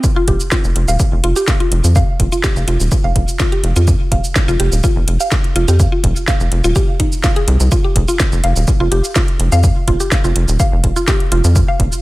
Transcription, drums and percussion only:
0.04 kick, shaker
0.28 kick, closed hi-hat
0.40 shaker
0.52 kick, snare, shaker
0.64 shaker
0.76 closed hi-hat
0.88 shaker
1.00 kick, shaker
1.24 closed hi-hat
1.36 shaker
1.48 kick, snare, shaker
1.60 closed hi-hat
1.72 closed hi-hat
1.84 closed hi-hat, shaker
1.96 kick, shaker
2.20 kick, closed hi-hat
2.32 shaker
2.44 kick, snare, shaker
2.56 shaker
2.68 closed hi-hat
2.80 shaker
2.92 kick, shaker
3.16 kick, closed hi-hat
3.28 shaker
3.40 kick, snare, shaker
3.52 closed hi-hat
3.64 closed hi-hat
3.76 closed hi-hat, shaker
3.88 kick, shaker
4.12 kick, closed hi-hat
4.24 shaker
4.36 kick, snare, shaker
4.48 shaker
4.60 closed hi-hat
4.72 shaker
4.84 kick, shaker
5.08 closed hi-hat
5.20 shaker
5.32 kick, snare, shaker
5.44 closed hi-hat
5.56 closed hi-hat
5.68 closed hi-hat, shaker
5.80 kick, shaker
6.04 kick, closed hi-hat
6.16 shaker
6.28 kick, snare, shaker
6.40 shaker
6.52 closed hi-hat
6.64 shaker
6.76 kick, shaker
7.00 kick, closed hi-hat
7.12 shaker
7.24 kick, snare, shaker
7.36 closed hi-hat
7.48 closed hi-hat
7.60 closed hi-hat, shaker
7.72 kick, shaker
7.96 kick, closed hi-hat
8.08 shaker
8.20 kick, snare, shaker
8.32 shaker
8.44 closed hi-hat
8.56 shaker
8.68 kick, shaker
8.92 closed hi-hat
9.04 shaker
9.16 kick, snare, shaker
9.28 closed hi-hat
9.40 closed hi-hat
9.52 closed hi-hat, shaker
9.64 kick, shaker
9.88 kick, closed hi-hat
10.00 shaker
10.12 kick, snare, shaker
10.24 shaker
10.36 closed hi-hat
10.48 shaker
10.60 kick, shaker
10.84 kick, closed hi-hat
10.96 shaker
11.08 kick, snare, shaker
11.20 closed hi-hat
11.32 closed hi-hat
11.44 closed hi-hat, shaker
11.56 kick, shaker
11.80 kick, closed hi-hat
11.92 shaker

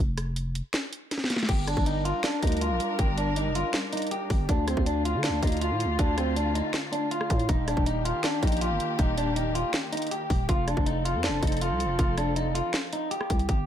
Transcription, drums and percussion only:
0.18 cross-stick, closed hi-hat
0.36 closed hi-hat
0.55 closed hi-hat
0.73 finger snap, snare, closed hi-hat
0.93 closed hi-hat
1.11 snare, closed hi-hat
1.18 snare
1.24 snare
1.30 snare, closed hi-hat
1.36 snare, closed hi-hat
1.43 snare
1.49 kick, closed hi-hat, crash
1.67 cross-stick, closed hi-hat
1.77 kick
1.86 closed hi-hat
2.05 closed hi-hat
2.23 finger snap, snare, closed hi-hat
2.43 kick, closed hi-hat
2.47 closed hi-hat
2.52 closed hi-hat
2.57 closed hi-hat
2.61 closed hi-hat
2.80 closed hi-hat
2.99 kick, closed hi-hat
3.18 closed hi-hat
3.36 closed hi-hat
3.55 closed hi-hat
3.73 finger snap, snare, closed hi-hat
3.93 closed hi-hat
3.97 closed hi-hat
4.02 closed hi-hat
4.07 closed hi-hat
4.11 closed hi-hat
4.30 kick, open hi-hat
4.49 kick, closed hi-hat
4.68 cross-stick, closed hi-hat
4.77 kick
4.86 closed hi-hat
5.05 closed hi-hat
5.23 finger snap, snare, closed hi-hat
5.43 kick, closed hi-hat
5.47 closed hi-hat
5.52 closed hi-hat
5.57 closed hi-hat
5.61 closed hi-hat
5.80 closed hi-hat
5.99 kick, closed hi-hat
6.18 cross-stick, closed hi-hat
6.36 closed hi-hat
6.55 closed hi-hat
6.73 finger snap, snare, closed hi-hat
6.93 closed hi-hat
7.11 closed hi-hat
7.21 cross-stick
7.30 kick, closed hi-hat
7.40 closed hi-hat
7.49 kick, closed hi-hat
7.68 cross-stick, closed hi-hat
7.77 kick
7.86 closed hi-hat
8.05 closed hi-hat
8.23 finger snap, snare, closed hi-hat
8.43 kick, closed hi-hat
8.47 closed hi-hat
8.52 closed hi-hat
8.57 closed hi-hat
8.61 closed hi-hat
8.80 closed hi-hat
8.99 kick, closed hi-hat
9.18 closed hi-hat
9.36 closed hi-hat
9.55 closed hi-hat
9.73 finger snap, snare, closed hi-hat
9.93 closed hi-hat
9.97 closed hi-hat
10.02 closed hi-hat
10.07 closed hi-hat
10.11 closed hi-hat
10.30 kick, open hi-hat
10.49 kick, closed hi-hat
10.68 cross-stick, closed hi-hat
10.77 kick
10.86 closed hi-hat
11.05 closed hi-hat
11.23 finger snap, snare, closed hi-hat
11.43 kick, closed hi-hat
11.47 closed hi-hat
11.52 closed hi-hat
11.57 closed hi-hat
11.61 closed hi-hat
11.80 closed hi-hat
11.99 kick, closed hi-hat
12.18 cross-stick, closed hi-hat
12.36 closed hi-hat
12.55 closed hi-hat
12.73 finger snap, snare, closed hi-hat
12.93 closed hi-hat
13.11 closed hi-hat
13.21 cross-stick
13.30 kick, closed hi-hat
13.39 closed hi-hat
13.49 kick, closed hi-hat

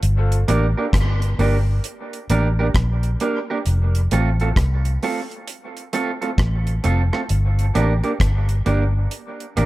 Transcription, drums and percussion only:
0.03 closed hi-hat
0.32 closed hi-hat
0.48 closed hi-hat
0.93 kick, cross-stick, closed hi-hat
1.22 closed hi-hat
1.39 open hi-hat
1.84 closed hi-hat
2.13 closed hi-hat
2.30 closed hi-hat
2.75 kick, cross-stick, closed hi-hat
3.03 closed hi-hat
3.20 closed hi-hat
3.66 closed hi-hat
3.95 closed hi-hat
4.11 closed hi-hat
4.40 closed hi-hat
4.56 kick, cross-stick, closed hi-hat
4.85 closed hi-hat
5.03 open hi-hat
5.31 closed hi-hat
5.48 closed hi-hat
5.77 closed hi-hat
5.93 closed hi-hat
6.22 closed hi-hat
6.38 kick, cross-stick, closed hi-hat
6.67 closed hi-hat
6.84 closed hi-hat
7.13 cross-stick
7.29 closed hi-hat
7.59 closed hi-hat
7.75 closed hi-hat
8.04 closed hi-hat
8.20 kick, cross-stick, closed hi-hat
8.49 closed hi-hat
8.66 closed hi-hat
9.11 closed hi-hat
9.40 closed hi-hat
9.57 closed hi-hat

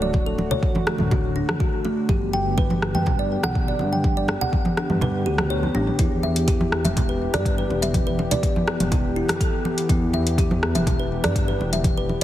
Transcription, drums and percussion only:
0.02 mid tom
0.13 kick, high conga
0.38 muted conga
0.51 low conga
0.63 kick
0.75 muted conga, high conga
0.87 cross-stick
0.98 mid tom, high conga
1.11 kick, muted conga, low conga
1.49 cross-stick, mid tom, muted conga, high conga
1.60 kick
1.85 muted conga
2.09 kick, high conga
2.34 muted conga
2.58 kick, high conga
2.70 muted conga, high conga
2.82 cross-stick
2.95 mid tom, high conga
3.06 kick, muted conga, low conga
3.43 cross-stick, muted conga, high conga
3.55 kick
3.79 muted conga
3.92 mid tom
4.04 kick, high conga
4.28 cross-stick, muted conga
4.42 low conga
4.53 kick, high conga
4.65 muted conga, high conga
4.77 cross-stick
4.90 mid tom, high conga
5.01 muted conga, low conga
5.38 cross-stick, mid tom, muted conga, high conga
5.63 high tom, high conga
5.75 mid tom, muted conga
5.87 mid tom
5.99 kick, closed hi-hat, high conga
6.23 muted conga
6.36 closed hi-hat
6.47 kick, closed hi-hat, high conga
6.61 muted conga, high conga
6.72 cross-stick
6.85 closed hi-hat, mid tom, high conga
6.97 kick, closed hi-hat, muted conga, low conga
7.34 cross-stick, closed hi-hat, muted conga, high conga
7.45 kick, closed hi-hat
7.70 muted conga
7.83 closed hi-hat, mid tom
7.94 kick, closed hi-hat, high conga
8.19 muted conga
8.31 closed hi-hat, low conga
8.43 kick, closed hi-hat
8.56 muted conga, high conga
8.68 cross-stick
8.80 closed hi-hat, mid tom, high conga
8.91 kick, closed hi-hat, muted conga, low conga
9.29 cross-stick, closed hi-hat, mid tom, muted conga, high conga
9.41 kick, closed hi-hat
9.65 muted conga
9.78 closed hi-hat
9.89 kick, closed hi-hat, high conga
10.13 muted conga
10.27 closed hi-hat
10.38 kick, closed hi-hat, high conga
10.51 muted conga, high conga
10.63 cross-stick
10.75 closed hi-hat, mid tom, high conga
10.87 kick, closed hi-hat, muted conga, low conga
11.24 cross-stick, closed hi-hat, muted conga, high conga
11.36 kick, closed hi-hat
11.61 muted conga
11.73 closed hi-hat, mid tom
11.84 kick, closed hi-hat, high conga
12.09 muted conga

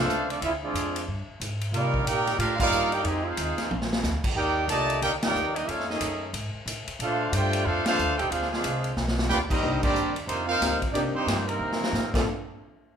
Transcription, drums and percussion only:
0.09 hi-hat pedal
0.30 ride
0.42 ride
0.75 hi-hat pedal, ride
0.96 ride
1.41 hi-hat pedal, ride
1.61 ride
1.74 ride
1.94 kick
2.07 hi-hat pedal, ride
2.27 snare, ride
2.40 ride
2.60 kick, crash
2.72 hi-hat pedal
2.92 ride
3.04 ride
3.37 hi-hat pedal, ride
3.58 snare, ride
3.71 high tom
3.82 snare
3.93 snare
4.04 snare, hi-hat pedal
4.24 kick, crash
4.69 hi-hat pedal, ride
4.90 ride
5.02 ride
5.22 snare, ride
5.35 hi-hat pedal
5.56 ride
5.69 ride
5.80 snare
5.90 snare
6.01 hi-hat pedal, ride
6.34 ride
6.67 hi-hat pedal, ride
6.87 ride
7.00 ride
7.33 hi-hat pedal, ride
7.53 ride
7.86 snare, ride
7.98 hi-hat pedal
8.19 ride
8.32 ride
8.42 snare
8.53 snare
8.64 hi-hat pedal, ride
8.84 ride
8.97 snare
9.08 snare
9.19 snare
9.30 snare, hi-hat pedal
9.50 kick, crash
9.83 kick, crash
9.95 hi-hat pedal
10.16 ride
10.29 ride
10.62 snare, hi-hat pedal, ride
10.82 kick, ride
10.95 ride
11.28 snare, hi-hat pedal, ride
11.49 ride
11.72 snare
11.84 snare
11.94 snare, hi-hat pedal
12.14 kick, snare, crash

